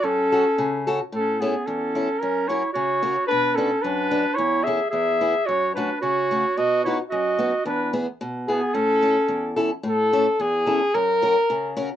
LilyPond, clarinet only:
\new Staff \with { instrumentName = "Clarinet" } { \time 2/4 \key fis \minor \tempo 4 = 110 cis'4. r8 | \key a \major cis'8 b8 cis'4 | cis'8 e'8 fis'4 | d'8 cis'8 d'4 |
e'8 gis'8 gis'4 | fis'8 d'8 fis'4 | fis'8 e'8 fis'4 | d'8 r4 b8 |
cis'4. r8 | r2 | r2 | }